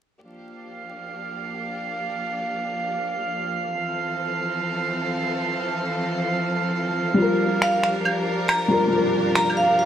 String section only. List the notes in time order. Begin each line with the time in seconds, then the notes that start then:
0.22 F3 A#3 D4 G4
3.70 E3 C4 A4
7.18 D4 G4 A#4